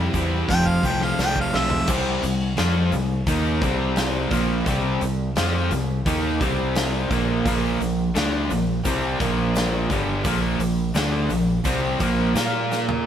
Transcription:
Already playing: C3 E3 G3 C4 E4 G4
0.13 E2 C3 G3 C4 E4 G4, kick, open hi-hat, shaker
0.48 F1 F2 C3 F3 A3 C4 F4 G5, kick, snare, shaker
0.66 F5, kick
0.83 C2 F2 C3 F3 A3 C4 G5, kick, shaker
1.01 F5, snare, shaker
1.19 C2 F2 C3 F3 A3 C4 F4 G5, snare, shaker
1.36 kick
1.41 F5
1.53 B1 F2 C3 F3 A3 C4 F4 E5, snare
1.70 floor tom
1.87 C2 C3 G3 C4, kick, crash, shaker
2.21 C2 C3 G3, open hi-hat, shaker
2.56 F2 F3 C4 F4, snare, open hi-hat, shaker
2.91 C2 C3 G3, open hi-hat, shaker
3.26 D#2 D#3 A#3 D#4, kick, open hi-hat, shaker
3.61 C2 C3 G3 C4, kick, open hi-hat, shaker
3.96 snare, open hi-hat, shaker
4.30 A#1 A#2 F3 A#3, kick, open hi-hat, shaker
4.65 C2 C3 G3 C4, kick, open hi-hat, shaker
5.01 C2 C3 G3, open hi-hat, shaker
5.36 F2 F3 C4 F4, snare, open hi-hat, shaker
5.70 C2 C3 G3, open hi-hat, shaker
6.06 D#2 D#3 A#3 D#4, kick, open hi-hat, shaker
6.41 C2 C3 G3 C4, kick, open hi-hat, shaker
6.75 snare, open hi-hat, shaker
7.10 A#1 A#2 F3 A#3, kick, open hi-hat, shaker
7.45 A#1 A#2 F3 A#3, kick, open hi-hat, shaker
7.80 A#1 A#2 F3, open hi-hat, shaker
8.15 D2 D3 A3 D4, snare, open hi-hat, shaker
8.50 A#1 A#2 F3, open hi-hat, shaker
8.85 C2 C3 G3 C4, kick, open hi-hat, shaker
9.20 A#1 A#2 F3 A#3, kick, open hi-hat, shaker
9.55 snare, open hi-hat, shaker
9.90 G1 G2 D3 G3, kick, open hi-hat, shaker
10.25 A#1 A#2 F3 A#3, kick, open hi-hat, shaker
10.59 A#1 A#2 F3, open hi-hat, shaker
10.95 D2 D3 A3 D4, snare, open hi-hat, shaker
11.29 A#1 A#2 F3, open hi-hat, shaker
11.64 C2 C3 G3 C4, kick, open hi-hat, shaker
12.00 A#1 A#2 F3 A#3, kick, open hi-hat, shaker
12.35 A#2 A#3 F4 A#4, snare, open hi-hat, shaker
12.72 snare, shaker
12.89 floor tom

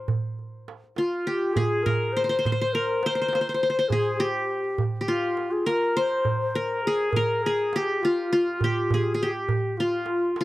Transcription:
Already playing: C5
0.08 darbuka dum
0.24 darbuka ka
0.39 darbuka ka
0.68 darbuka tek
0.84 darbuka ka
0.96 F4, darbuka tek
1.27 G4, darbuka ka
1.42 darbuka ka
1.53 G#4, darbuka dum
1.83 A#4, darbuka dum
2.13 C5
2.24 C5
2.29 C5
2.39 C5
2.45 C5, darbuka dum
2.52 C5
2.59 C5, darbuka ka
2.73 A#4
3.03 C5, darbuka tek
3.15 C5, darbuka ka
3.22 C5
3.28 C5
3.33 C5, darbuka tek
3.41 C5
3.49 C5
3.54 C5
3.62 C5, darbuka ka
3.70 C5
3.76 C5, darbuka ka
3.89 G#4, darbuka dum
4.18 G4
4.64 darbuka ka
4.78 darbuka dum
4.92 darbuka ka
5.01 G4
5.07 F4
5.37 darbuka tek
5.51 G#4, darbuka ka
5.66 A#4, darbuka tek
5.96 C5, darbuka ka
6.11 darbuka ka
6.25 darbuka dum
6.40 C5, darbuka ka
6.55 A#4
6.84 G#4
7.00 darbuka ka
7.11 A#4, darbuka dum
7.16 A#4
7.42 G#4
7.73 G4, darbuka tek
7.88 darbuka ka
8.01 F4, darbuka tek
8.32 F4, darbuka ka
8.47 darbuka ka
8.60 G4, darbuka dum
8.64 G4
8.90 G#4, darbuka dum
9.14 G#4
9.20 G4, darbuka ka
9.49 darbuka dum
9.63 darbuka ka
9.77 F4, darbuka ka
10.06 darbuka tek
10.35 F4, darbuka tek
10.41 F4

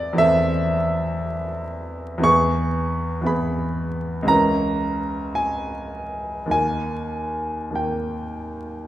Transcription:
Already playing: E2 E3 C4 A4 D5 E5
0.13 E2 E3 C4
0.18 A4 E5
2.18 E2 E3 B3
2.23 G#4 C#6
3.21 E2 E3 B3
3.26 G#4 B5
4.23 C#2 E3 C#4
4.28 A#4 A#5
5.35 G#5
6.46 D#2 D#3 A#3
6.51 A#4 G#5
7.71 D#2 D#3 A#3
7.75 A#4 G5

